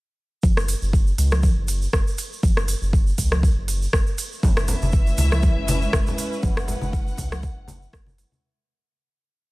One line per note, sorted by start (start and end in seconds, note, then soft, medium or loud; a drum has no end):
0.43 0.74 F#1 medium
0.43 kick loud
0.43 mid tom loud
0.43 shaker medium
0.57 cross-stick medium
0.57 shaker soft
0.68 open hi-hat medium
0.68 shaker medium
0.82 1.12 F#1 medium
0.82 shaker soft
0.93 kick loud
0.93 shaker medium
1.07 shaker soft
1.18 1.49 C#2 medium
1.18 open hi-hat medium
1.18 shaker medium
1.31 cross-stick medium
1.31 mid tom loud
1.31 shaker soft
1.43 kick loud
1.43 mid tom medium
1.43 shaker medium
1.57 1.87 F#1 medium
1.68 open hi-hat medium
1.68 shaker medium
1.82 shaker soft
1.93 2.02 F#1 medium
1.93 kick loud
1.93 cross-stick medium
1.93 shaker medium
2.07 shaker soft
2.18 open hi-hat medium
2.18 shaker medium
2.33 shaker soft
2.43 2.74 F#1 medium
2.43 kick loud
2.43 mid tom loud
2.43 shaker medium
2.57 cross-stick medium
2.57 shaker soft
2.68 open hi-hat medium
2.68 shaker loud
2.82 3.12 F#1 medium
2.82 shaker soft
2.93 kick loud
2.93 shaker medium
3.07 shaker soft
3.18 3.49 C#2 medium
3.18 kick medium
3.18 open hi-hat loud
3.18 shaker loud
3.32 cross-stick medium
3.32 mid tom medium
3.43 kick loud
3.43 shaker medium
3.57 3.87 F#1 medium
3.68 open hi-hat loud
3.68 shaker loud
3.82 shaker soft
3.93 4.02 F#1 medium
3.93 kick loud
3.93 cross-stick loud
3.93 shaker medium
4.07 shaker soft
4.18 open hi-hat medium
4.18 shaker loud
4.32 shaker soft
4.43 4.74 F#1 loud
4.43 8.39 G#3 medium
4.43 8.39 C#4 medium
4.43 8.39 E4 medium
4.43 8.39 B4 medium
4.43 6.41 E5 medium
4.43 kick loud
4.43 mid tom medium
4.43 low conga medium
4.43 shaker medium
4.57 cross-stick loud
4.57 muted conga medium
4.57 high conga medium
4.57 shaker soft
4.68 open hi-hat medium
4.68 low conga loud
4.68 shaker medium
4.82 5.12 F#1 medium
4.82 high conga loud
4.82 shaker soft
4.92 kick loud
4.92 shaker medium
5.07 muted conga soft
5.07 shaker soft
5.18 5.49 C#2 loud
5.18 open hi-hat medium
5.18 high conga loud
5.18 shaker medium
5.32 cross-stick medium
5.32 mid tom loud
5.32 shaker soft
5.42 kick loud
5.42 mid tom medium
5.42 muted conga soft
5.42 high conga loud
5.42 shaker medium
5.57 5.87 F#1 medium
5.68 open hi-hat medium
5.68 high conga loud
5.68 shaker loud
5.82 muted conga soft
5.82 shaker soft
5.93 6.02 F#1 medium
5.93 kick loud
5.93 cross-stick loud
5.93 high conga medium
5.93 shaker medium
6.07 low conga medium
6.07 shaker soft
6.18 open hi-hat medium
6.18 muted conga soft
6.18 shaker loud
6.32 shaker soft
6.43 6.74 F#1 loud
6.43 8.41 F#5 medium
6.43 kick loud
6.43 mid tom medium
6.43 low conga medium
6.43 shaker medium
6.57 cross-stick medium
6.57 muted conga soft
6.57 high conga medium
6.57 shaker soft
6.68 open hi-hat medium
6.68 low conga loud
6.68 shaker medium
6.81 7.12 F#1 medium
6.81 high conga loud
6.81 shaker soft
6.93 kick loud
6.93 shaker soft
7.07 muted conga soft
7.07 shaker soft
7.18 7.49 C#2 medium
7.18 kick medium
7.18 open hi-hat medium
7.18 high conga loud
7.18 shaker loud
7.32 cross-stick medium
7.32 mid tom medium
7.32 shaker soft
7.43 kick loud
7.43 muted conga soft
7.43 shaker medium
7.57 7.87 F#1 medium
7.68 open hi-hat medium
7.68 high conga loud
7.68 low conga loud
7.68 shaker medium
7.82 muted conga soft
7.82 shaker soft
7.93 8.24 F#1 medium
7.93 kick loud
7.93 cross-stick loud
7.93 shaker medium
8.06 high conga loud
8.06 shaker soft
8.18 open hi-hat medium
8.18 muted conga soft
8.18 shaker medium
8.32 high conga medium
8.32 shaker soft